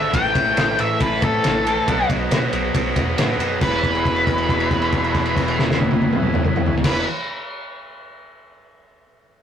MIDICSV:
0, 0, Header, 1, 6, 480
1, 0, Start_track
1, 0, Key_signature, 4, "major"
1, 0, Tempo, 436047
1, 145, Time_signature, 4, 2, 24, 8
1, 10375, End_track
2, 0, Start_track
2, 0, Title_t, "Lead electric guitar"
2, 0, Program_c, 0, 29
2, 0, Note_on_c, 0, 76, 82
2, 151, Note_off_c, 0, 76, 0
2, 156, Note_on_c, 0, 79, 97
2, 849, Note_off_c, 0, 79, 0
2, 888, Note_on_c, 0, 76, 85
2, 1110, Note_off_c, 0, 76, 0
2, 1110, Note_on_c, 0, 71, 86
2, 1340, Note_off_c, 0, 71, 0
2, 1369, Note_on_c, 0, 69, 102
2, 2289, Note_off_c, 0, 69, 0
2, 3996, Note_on_c, 0, 71, 97
2, 7441, Note_off_c, 0, 71, 0
2, 7547, Note_on_c, 0, 71, 98
2, 7752, Note_off_c, 0, 71, 0
2, 10375, End_track
3, 0, Start_track
3, 0, Title_t, "Transistor combo organ"
3, 0, Program_c, 1, 18
3, 0, Note_on_c, 1, 69, 81
3, 111, Note_off_c, 1, 69, 0
3, 160, Note_on_c, 1, 61, 63
3, 160, Note_on_c, 1, 64, 57
3, 160, Note_on_c, 1, 69, 69
3, 2034, Note_off_c, 1, 61, 0
3, 2034, Note_off_c, 1, 64, 0
3, 2034, Note_off_c, 1, 69, 0
3, 2071, Note_on_c, 1, 63, 79
3, 2073, Note_on_c, 1, 66, 71
3, 2077, Note_on_c, 1, 71, 86
3, 3951, Note_off_c, 1, 63, 0
3, 3952, Note_off_c, 1, 66, 0
3, 3954, Note_off_c, 1, 71, 0
3, 3979, Note_on_c, 1, 71, 86
3, 3981, Note_on_c, 1, 68, 72
3, 3990, Note_on_c, 1, 64, 77
3, 7433, Note_off_c, 1, 71, 0
3, 7434, Note_off_c, 1, 68, 0
3, 7438, Note_off_c, 1, 64, 0
3, 7540, Note_on_c, 1, 64, 76
3, 7549, Note_on_c, 1, 68, 79
3, 7549, Note_on_c, 1, 71, 92
3, 7740, Note_off_c, 1, 64, 0
3, 7744, Note_off_c, 1, 71, 0
3, 7745, Note_off_c, 1, 68, 0
3, 10375, End_track
4, 0, Start_track
4, 0, Title_t, "Distorted electric guitar"
4, 0, Program_c, 2, 30
4, 0, Note_on_c, 2, 50, 74
4, 0, Note_on_c, 2, 57, 61
4, 0, Note_on_c, 2, 62, 73
4, 127, Note_off_c, 2, 62, 0
4, 130, Note_off_c, 2, 50, 0
4, 154, Note_off_c, 2, 57, 0
4, 155, Note_on_c, 2, 45, 99
4, 176, Note_on_c, 2, 52, 110
4, 199, Note_on_c, 2, 57, 105
4, 362, Note_off_c, 2, 57, 0
4, 375, Note_on_c, 2, 57, 68
4, 413, Note_off_c, 2, 52, 0
4, 426, Note_on_c, 2, 52, 57
4, 604, Note_off_c, 2, 45, 0
4, 617, Note_on_c, 2, 45, 83
4, 632, Note_off_c, 2, 52, 0
4, 645, Note_on_c, 2, 52, 94
4, 656, Note_off_c, 2, 57, 0
4, 669, Note_on_c, 2, 57, 100
4, 1322, Note_off_c, 2, 57, 0
4, 1335, Note_on_c, 2, 57, 80
4, 1370, Note_off_c, 2, 52, 0
4, 1383, Note_on_c, 2, 52, 57
4, 1568, Note_off_c, 2, 45, 0
4, 1581, Note_on_c, 2, 45, 70
4, 1595, Note_off_c, 2, 52, 0
4, 1608, Note_on_c, 2, 52, 77
4, 1611, Note_off_c, 2, 57, 0
4, 1624, Note_on_c, 2, 57, 87
4, 1803, Note_off_c, 2, 57, 0
4, 1816, Note_on_c, 2, 57, 64
4, 1850, Note_off_c, 2, 52, 0
4, 1863, Note_on_c, 2, 52, 58
4, 2046, Note_off_c, 2, 57, 0
4, 2049, Note_off_c, 2, 45, 0
4, 2069, Note_on_c, 2, 47, 84
4, 2070, Note_off_c, 2, 52, 0
4, 2091, Note_on_c, 2, 54, 100
4, 2112, Note_on_c, 2, 59, 104
4, 2296, Note_off_c, 2, 59, 0
4, 2310, Note_on_c, 2, 59, 65
4, 2347, Note_off_c, 2, 54, 0
4, 2360, Note_on_c, 2, 54, 60
4, 2529, Note_off_c, 2, 47, 0
4, 2542, Note_on_c, 2, 47, 82
4, 2560, Note_off_c, 2, 54, 0
4, 2574, Note_on_c, 2, 54, 96
4, 2578, Note_off_c, 2, 59, 0
4, 2591, Note_on_c, 2, 59, 83
4, 3245, Note_off_c, 2, 59, 0
4, 3258, Note_on_c, 2, 59, 61
4, 3296, Note_off_c, 2, 54, 0
4, 3309, Note_on_c, 2, 54, 53
4, 3473, Note_off_c, 2, 47, 0
4, 3487, Note_on_c, 2, 47, 75
4, 3501, Note_off_c, 2, 54, 0
4, 3515, Note_on_c, 2, 54, 83
4, 3516, Note_off_c, 2, 59, 0
4, 3529, Note_on_c, 2, 59, 82
4, 3717, Note_off_c, 2, 59, 0
4, 3730, Note_on_c, 2, 59, 61
4, 3761, Note_off_c, 2, 54, 0
4, 3774, Note_on_c, 2, 54, 53
4, 3962, Note_off_c, 2, 47, 0
4, 3964, Note_off_c, 2, 59, 0
4, 3971, Note_on_c, 2, 40, 84
4, 3986, Note_off_c, 2, 54, 0
4, 4001, Note_on_c, 2, 47, 108
4, 4014, Note_on_c, 2, 52, 101
4, 7526, Note_off_c, 2, 40, 0
4, 7531, Note_on_c, 2, 40, 81
4, 7545, Note_off_c, 2, 47, 0
4, 7549, Note_on_c, 2, 47, 97
4, 7570, Note_off_c, 2, 52, 0
4, 7574, Note_on_c, 2, 52, 94
4, 7750, Note_off_c, 2, 40, 0
4, 7760, Note_off_c, 2, 47, 0
4, 7772, Note_off_c, 2, 52, 0
4, 10375, End_track
5, 0, Start_track
5, 0, Title_t, "Fingered electric bass"
5, 0, Program_c, 3, 33
5, 0, Note_on_c, 3, 32, 85
5, 145, Note_off_c, 3, 32, 0
5, 145, Note_on_c, 3, 33, 95
5, 326, Note_off_c, 3, 33, 0
5, 383, Note_on_c, 3, 33, 85
5, 565, Note_off_c, 3, 33, 0
5, 629, Note_on_c, 3, 33, 90
5, 808, Note_off_c, 3, 33, 0
5, 873, Note_on_c, 3, 45, 86
5, 1051, Note_off_c, 3, 45, 0
5, 1111, Note_on_c, 3, 33, 93
5, 1289, Note_off_c, 3, 33, 0
5, 1341, Note_on_c, 3, 45, 89
5, 1523, Note_off_c, 3, 45, 0
5, 1608, Note_on_c, 3, 34, 93
5, 1961, Note_off_c, 3, 34, 0
5, 2066, Note_on_c, 3, 35, 94
5, 2247, Note_off_c, 3, 35, 0
5, 2306, Note_on_c, 3, 35, 91
5, 2486, Note_off_c, 3, 35, 0
5, 2532, Note_on_c, 3, 47, 87
5, 2718, Note_off_c, 3, 47, 0
5, 2781, Note_on_c, 3, 35, 90
5, 2964, Note_off_c, 3, 35, 0
5, 3022, Note_on_c, 3, 35, 84
5, 3204, Note_off_c, 3, 35, 0
5, 3259, Note_on_c, 3, 40, 87
5, 3442, Note_off_c, 3, 40, 0
5, 3496, Note_on_c, 3, 45, 82
5, 3681, Note_off_c, 3, 45, 0
5, 3721, Note_on_c, 3, 42, 84
5, 3911, Note_off_c, 3, 42, 0
5, 3973, Note_on_c, 3, 28, 86
5, 7430, Note_off_c, 3, 28, 0
5, 7525, Note_on_c, 3, 28, 81
5, 7732, Note_off_c, 3, 28, 0
5, 10375, End_track
6, 0, Start_track
6, 0, Title_t, "Drums"
6, 149, Note_on_c, 9, 36, 120
6, 150, Note_on_c, 9, 51, 88
6, 259, Note_off_c, 9, 36, 0
6, 260, Note_off_c, 9, 51, 0
6, 389, Note_on_c, 9, 36, 81
6, 389, Note_on_c, 9, 51, 68
6, 499, Note_off_c, 9, 36, 0
6, 499, Note_off_c, 9, 51, 0
6, 628, Note_on_c, 9, 51, 85
6, 637, Note_on_c, 9, 38, 107
6, 738, Note_off_c, 9, 51, 0
6, 747, Note_off_c, 9, 38, 0
6, 866, Note_on_c, 9, 51, 67
6, 976, Note_off_c, 9, 51, 0
6, 1105, Note_on_c, 9, 51, 86
6, 1107, Note_on_c, 9, 36, 100
6, 1215, Note_off_c, 9, 51, 0
6, 1217, Note_off_c, 9, 36, 0
6, 1343, Note_on_c, 9, 51, 65
6, 1347, Note_on_c, 9, 36, 87
6, 1453, Note_off_c, 9, 51, 0
6, 1457, Note_off_c, 9, 36, 0
6, 1585, Note_on_c, 9, 51, 81
6, 1593, Note_on_c, 9, 38, 106
6, 1695, Note_off_c, 9, 51, 0
6, 1703, Note_off_c, 9, 38, 0
6, 1834, Note_on_c, 9, 51, 63
6, 1944, Note_off_c, 9, 51, 0
6, 2068, Note_on_c, 9, 36, 113
6, 2069, Note_on_c, 9, 51, 92
6, 2178, Note_off_c, 9, 36, 0
6, 2179, Note_off_c, 9, 51, 0
6, 2307, Note_on_c, 9, 36, 86
6, 2308, Note_on_c, 9, 51, 73
6, 2417, Note_off_c, 9, 36, 0
6, 2418, Note_off_c, 9, 51, 0
6, 2546, Note_on_c, 9, 51, 88
6, 2555, Note_on_c, 9, 38, 97
6, 2656, Note_off_c, 9, 51, 0
6, 2665, Note_off_c, 9, 38, 0
6, 2782, Note_on_c, 9, 51, 64
6, 2892, Note_off_c, 9, 51, 0
6, 3023, Note_on_c, 9, 36, 101
6, 3024, Note_on_c, 9, 51, 92
6, 3133, Note_off_c, 9, 36, 0
6, 3134, Note_off_c, 9, 51, 0
6, 3259, Note_on_c, 9, 51, 72
6, 3261, Note_on_c, 9, 36, 84
6, 3370, Note_off_c, 9, 51, 0
6, 3371, Note_off_c, 9, 36, 0
6, 3501, Note_on_c, 9, 51, 97
6, 3510, Note_on_c, 9, 38, 110
6, 3611, Note_off_c, 9, 51, 0
6, 3620, Note_off_c, 9, 38, 0
6, 3743, Note_on_c, 9, 51, 68
6, 3854, Note_off_c, 9, 51, 0
6, 3976, Note_on_c, 9, 49, 89
6, 3978, Note_on_c, 9, 36, 102
6, 4086, Note_off_c, 9, 49, 0
6, 4088, Note_off_c, 9, 36, 0
6, 4221, Note_on_c, 9, 36, 59
6, 4225, Note_on_c, 9, 49, 41
6, 4331, Note_off_c, 9, 36, 0
6, 4335, Note_off_c, 9, 49, 0
6, 4346, Note_on_c, 9, 57, 40
6, 4456, Note_off_c, 9, 57, 0
6, 4462, Note_on_c, 9, 36, 60
6, 4469, Note_on_c, 9, 49, 41
6, 4572, Note_off_c, 9, 36, 0
6, 4579, Note_off_c, 9, 49, 0
6, 4581, Note_on_c, 9, 57, 38
6, 4691, Note_off_c, 9, 57, 0
6, 4700, Note_on_c, 9, 36, 58
6, 4700, Note_on_c, 9, 49, 45
6, 4810, Note_off_c, 9, 36, 0
6, 4810, Note_off_c, 9, 49, 0
6, 4820, Note_on_c, 9, 57, 45
6, 4930, Note_off_c, 9, 57, 0
6, 4944, Note_on_c, 9, 36, 57
6, 4949, Note_on_c, 9, 49, 47
6, 5054, Note_off_c, 9, 36, 0
6, 5059, Note_off_c, 9, 49, 0
6, 5065, Note_on_c, 9, 57, 46
6, 5175, Note_off_c, 9, 57, 0
6, 5183, Note_on_c, 9, 36, 61
6, 5184, Note_on_c, 9, 49, 42
6, 5293, Note_off_c, 9, 36, 0
6, 5294, Note_off_c, 9, 49, 0
6, 5301, Note_on_c, 9, 57, 49
6, 5412, Note_off_c, 9, 57, 0
6, 5420, Note_on_c, 9, 49, 48
6, 5424, Note_on_c, 9, 36, 61
6, 5530, Note_off_c, 9, 49, 0
6, 5534, Note_off_c, 9, 36, 0
6, 5548, Note_on_c, 9, 57, 45
6, 5659, Note_off_c, 9, 57, 0
6, 5665, Note_on_c, 9, 36, 62
6, 5666, Note_on_c, 9, 49, 43
6, 5775, Note_off_c, 9, 36, 0
6, 5776, Note_off_c, 9, 49, 0
6, 5785, Note_on_c, 9, 57, 52
6, 5895, Note_off_c, 9, 57, 0
6, 5907, Note_on_c, 9, 36, 69
6, 5912, Note_on_c, 9, 49, 53
6, 6017, Note_off_c, 9, 36, 0
6, 6022, Note_off_c, 9, 49, 0
6, 6031, Note_on_c, 9, 57, 57
6, 6141, Note_off_c, 9, 57, 0
6, 6154, Note_on_c, 9, 38, 81
6, 6264, Note_off_c, 9, 38, 0
6, 6284, Note_on_c, 9, 38, 93
6, 6388, Note_on_c, 9, 48, 87
6, 6394, Note_off_c, 9, 38, 0
6, 6498, Note_off_c, 9, 48, 0
6, 6506, Note_on_c, 9, 48, 85
6, 6616, Note_off_c, 9, 48, 0
6, 6626, Note_on_c, 9, 48, 83
6, 6736, Note_off_c, 9, 48, 0
6, 6746, Note_on_c, 9, 47, 94
6, 6856, Note_off_c, 9, 47, 0
6, 6859, Note_on_c, 9, 47, 89
6, 6969, Note_off_c, 9, 47, 0
6, 6979, Note_on_c, 9, 45, 98
6, 7089, Note_off_c, 9, 45, 0
6, 7095, Note_on_c, 9, 45, 89
6, 7205, Note_off_c, 9, 45, 0
6, 7222, Note_on_c, 9, 45, 101
6, 7332, Note_off_c, 9, 45, 0
6, 7335, Note_on_c, 9, 43, 88
6, 7445, Note_off_c, 9, 43, 0
6, 7460, Note_on_c, 9, 43, 98
6, 7530, Note_on_c, 9, 49, 99
6, 7532, Note_on_c, 9, 36, 102
6, 7539, Note_on_c, 9, 38, 95
6, 7570, Note_off_c, 9, 43, 0
6, 7640, Note_off_c, 9, 49, 0
6, 7642, Note_off_c, 9, 36, 0
6, 7649, Note_off_c, 9, 38, 0
6, 10375, End_track
0, 0, End_of_file